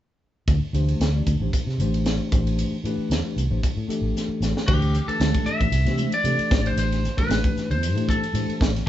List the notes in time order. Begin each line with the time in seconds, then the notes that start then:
0.48 D2, kick, hi-hat pedal, ride
0.73 D2 E3 A3 D4 G4 C5, hi-hat pedal, ride
0.88 ride
1.00 D2, snare, hi-hat pedal, ride
1.14 E3 A3 D4 G4 D5
1.26 D2, kick, hi-hat pedal, ride
1.40 A1 E3 A3 D4 G4 C5
1.53 C5, kick, hi-hat pedal, ride
1.67 C3, snare
1.78 A1 E3 A3 D4 G4 C5, hi-hat pedal, ride
1.94 ride
2.06 snare, hi-hat pedal, ride
2.31 A1 E3 A3 D4 G4 C5, kick, hi-hat pedal, ride
2.47 ride
2.59 hi-hat pedal, ride
2.84 A2 E3 A3 D4 G4 B4, hi-hat pedal, ride
2.98 muted fretless electric bass stroke
3.10 E2, snare, hi-hat pedal, ride
3.24 E3 A3 D4 G4 B4
3.36 C2, hi-hat pedal, ride
3.49 A1 E3 A3 D4 G4 C5
3.63 kick, hi-hat pedal, ride
3.77 A2
3.88 E3 A3 D4 G4 A4, muted fretless electric bass stroke, hi-hat pedal, ride
4.01 A1
4.17 snare, hi-hat pedal
4.28 muted fretless electric bass stroke
4.41 A1, snare, hi-hat pedal
4.57 snare
4.66 D2 E3 A3 D4 G4 C5, kick, crash
4.82 ride
4.94 hi-hat pedal
5.07 E3 A3 D4 G4 A4 B4, muted fretless electric bass stroke, ride
5.19 D2 E3 A3 D4 G4 A4, snare, hi-hat pedal, ride, high conga
5.35 kick, ride
5.46 E5, muted fretless electric bass stroke, hi-hat pedal, muted conga
5.60 A1, kick, ride
5.72 C2, hi-hat pedal, ride, muted conga
5.85 C3 E3 A3 D4 G4 C5, snare, ride
5.97 hi-hat pedal, muted conga, high conga
6.12 D5, ride
6.23 C3 E3 A3 D4 G4 A4, hi-hat pedal, ride, high conga
6.39 muted fretless electric bass stroke, ride
6.50 A1 E3 A3 D4 G4 C5, kick, snare, hi-hat pedal
6.66 C5, ride
6.76 A1 C5, hi-hat pedal, ride
6.92 snare, ride
7.02 snare, hi-hat pedal, low conga
7.17 E3 A3 D4 G4 B4 C5, kick, ride
7.28 A1 E3 A3 D4 G4, snare, hi-hat pedal, ride, high conga
7.44 kick, ride
7.55 muted fretless electric bass stroke, snare, hi-hat pedal, muted conga
7.70 E2 C5, ride
7.81 hi-hat pedal, ride, muted conga, low conga
7.95 A2 E3 A3 D4 G4 C5, ride
8.09 A4, kick, hi-hat pedal
8.23 ride
8.33 A2 E3 A3 D4 G4 C5, hi-hat pedal, ride, high conga
8.48 muted fretless electric bass stroke, ride
8.61 A1, kick, snare, hi-hat pedal
8.76 snare, ride